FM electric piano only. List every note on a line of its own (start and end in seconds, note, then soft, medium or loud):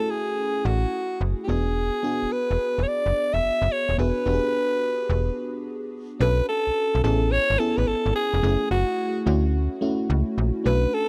0.00 1.50 A3 medium
0.00 1.50 C#4 medium
0.00 1.50 E4 medium
0.00 1.48 F#4 medium
0.00 0.68 G#4 medium
1.47 1.96 B3 medium
1.47 1.96 D4 medium
1.47 1.96 F#4 medium
1.47 1.96 G#4 medium
2.03 2.90 B3 medium
2.03 2.90 D4 medium
2.03 2.91 F#4 medium
2.03 2.91 G#4 medium
3.98 4.21 B3 medium
3.98 4.22 D4 medium
3.98 4.22 F#4 medium
3.98 4.22 G#4 medium
4.26 5.13 B3 medium
4.26 5.13 D4 medium
4.26 5.13 F#4 medium
4.26 4.35 G4 medium
4.33 5.16 G#4 medium
6.20 7.03 C#4 medium
6.20 7.04 D4 medium
6.20 7.04 F#4 medium
6.20 7.04 A4 medium
7.03 7.52 B3 medium
7.03 7.52 C#4 medium
7.03 7.52 E4 medium
7.03 7.52 G#4 medium
7.59 8.27 B3 medium
7.59 8.27 C#4 medium
7.59 8.27 E4 medium
7.59 8.27 G#4 medium
8.42 9.25 A3 medium
8.42 9.25 C#4 medium
8.42 9.25 E4 medium
8.42 9.26 G#4 medium
9.26 9.74 A3 medium
9.26 9.74 C#4 medium
9.26 9.74 E4 medium
9.26 9.74 F#4 loud
9.81 10.49 A3 medium
9.81 10.49 C#4 medium
9.81 10.49 E4 medium
9.81 10.49 F#4 loud
10.64 11.09 A3 medium
10.64 11.09 C#4 medium
10.64 11.09 D4 medium
10.64 11.09 F#4 medium